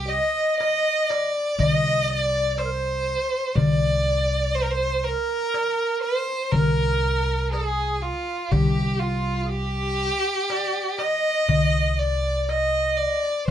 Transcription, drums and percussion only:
0.61 darbuka tek
1.10 darbuka tek
1.60 darbuka dum
2.10 darbuka ka
2.58 darbuka tek
3.08 darbuka ka
3.57 darbuka dum
4.80 darbuka ka
5.05 darbuka ka
5.54 darbuka tek
6.52 darbuka dum
7.04 darbuka ka
7.53 darbuka tek
8.03 darbuka ka
8.52 darbuka dum
9.77 darbuka ka
10.50 darbuka tek
10.99 darbuka tek
11.49 darbuka dum
12.00 darbuka ka
12.49 darbuka tek
13.00 darbuka ka

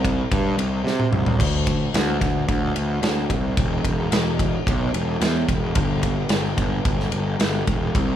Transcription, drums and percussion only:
0.05 kick, ride
0.32 kick, ride
0.59 ride
0.87 snare
1.00 mid tom
1.13 mid tom
1.26 floor tom
1.40 kick, crash
1.67 kick, ride
1.94 snare, ride
2.21 kick, snare, ride
2.49 kick, ride
2.76 ride
3.03 snare, ride
3.30 kick, ride
3.57 kick, ride
3.85 kick, ride
4.12 snare, ride
4.39 kick, ride
4.67 kick, ride
4.94 ride
5.21 snare, ride
5.49 kick, ride
5.75 kick, ride
6.03 kick, ride
6.29 snare, ride
6.58 kick, ride
6.85 kick, ride
7.00 snare
7.12 ride
7.40 snare, ride
7.67 kick, ride
7.95 kick, ride

